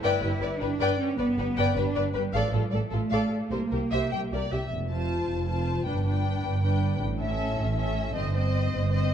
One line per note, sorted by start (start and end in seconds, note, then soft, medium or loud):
0.02 0.10 G1 medium
0.02 0.60 E4 medium
0.02 0.21 B4 medium
0.02 0.21 D5 medium
0.02 0.21 G5 medium
0.21 0.29 G1 soft
0.21 0.31 G4 soft
0.21 0.29 B4 soft
0.21 0.30 B4 soft
0.41 0.49 G1 soft
0.41 0.48 B4 soft
0.41 0.50 B4 soft
0.41 0.49 D5 soft
0.60 0.68 G1 soft
0.60 0.99 D4 medium
0.60 0.68 G4 soft
0.60 0.68 B4 soft
0.60 0.69 B4 soft
0.80 0.87 G1 medium
0.80 0.98 B4 medium
0.80 0.97 D5 medium
0.80 0.98 G5 soft
0.99 1.18 C#4 medium
1.18 1.26 G1 soft
1.18 1.75 B3 medium
1.18 1.26 B4 soft
1.18 1.26 D5 soft
1.38 1.45 G1 soft
1.38 1.46 G4 soft
1.38 1.45 B4 soft
1.38 1.46 B4 soft
1.56 1.64 G1 medium
1.56 1.75 B4 medium
1.56 1.75 D5 medium
1.56 1.74 G5 medium
1.75 1.83 G1 soft
1.75 2.13 D4 medium
1.75 1.84 G4 soft
1.75 1.83 B4 soft
1.75 1.84 B4 soft
1.95 2.03 G1 soft
1.95 2.03 B4 soft
1.95 2.04 B4 soft
1.95 2.02 D5 soft
2.14 2.22 G1 soft
2.14 2.33 G3 medium
2.14 2.23 G4 soft
2.14 2.21 B4 soft
2.14 2.22 B4 soft
2.32 2.41 A1 soft
2.32 2.53 F3 medium
2.32 2.52 A4 soft
2.32 2.52 D5 soft
2.32 2.51 F5 soft
2.53 2.60 A1 soft
2.53 2.72 G3 medium
2.53 2.62 F4 soft
2.53 2.61 A4 soft
2.71 2.80 A1 soft
2.71 2.91 A3 medium
2.71 2.81 A4 soft
2.71 2.82 A4 soft
2.71 2.79 D5 soft
2.90 3.00 A1 soft
2.90 3.51 A3 medium
2.90 3.00 F4 soft
2.90 2.98 A4 soft
2.90 3.00 A4 soft
3.10 3.20 A1 soft
3.10 3.31 A4 soft
3.10 3.31 D5 soft
3.10 3.29 F5 soft
3.51 3.60 C2 soft
3.51 4.51 A#3 medium
3.51 3.59 G4 soft
3.51 3.60 A#4 soft
3.51 3.59 C5 soft
3.71 3.80 C2 soft
3.71 3.80 G4 soft
3.71 3.81 G4 soft
3.71 3.79 A#4 soft
3.91 4.00 C2 medium
3.91 4.10 G4 soft
3.91 4.10 C5 soft
3.91 4.10 E5 soft
4.11 4.20 C2 soft
4.11 4.19 G4 soft
4.11 4.21 G4 soft
4.11 4.19 G5 medium
4.31 4.40 C2 soft
4.31 4.39 G4 soft
4.31 4.40 A#4 soft
4.31 4.51 D5 soft
4.51 4.59 C2 soft
4.51 4.59 G4 soft
4.51 4.61 G4 soft
4.51 4.71 E5 soft
4.70 5.22 F1 soft
4.70 5.22 F2 soft
4.90 5.46 F4 soft
4.90 5.47 C5 soft
4.90 5.46 A5 soft
5.28 5.79 F1 soft
5.28 5.79 F2 soft
5.47 5.85 F4 soft
5.47 5.85 C5 soft
5.47 5.85 A5 soft
5.85 6.37 G1 soft
5.85 6.37 G2 soft
5.85 6.03 D4 soft
5.85 6.04 B4 soft
5.85 6.03 G5 soft
6.04 6.61 D4 soft
6.04 6.60 B4 soft
6.04 6.61 G5 soft
6.43 6.93 G1 soft
6.43 6.94 G2 soft
6.62 7.00 D4 soft
6.62 6.99 B4 soft
6.62 7.00 G5 soft
7.00 7.51 A1 soft
7.00 7.51 A2 soft
7.19 7.75 C#4 soft
7.19 7.75 A4 soft
7.19 7.76 E5 soft
7.57 8.08 A1 soft
7.57 8.08 A2 soft
7.76 8.13 C#4 soft
7.76 8.14 A4 soft
7.76 8.14 E5 soft
8.14 8.65 G1 medium
8.14 8.65 G2 soft
8.14 8.32 C4 soft
8.14 8.33 C5 soft
8.14 8.33 D#5 soft
8.34 8.89 C4 soft
8.34 8.89 C5 soft
8.34 8.90 D#5 soft
8.71 9.14 G1 soft
8.71 9.14 G2 soft
8.91 9.14 C4 soft
8.91 9.14 C5 soft
8.91 9.14 D#5 soft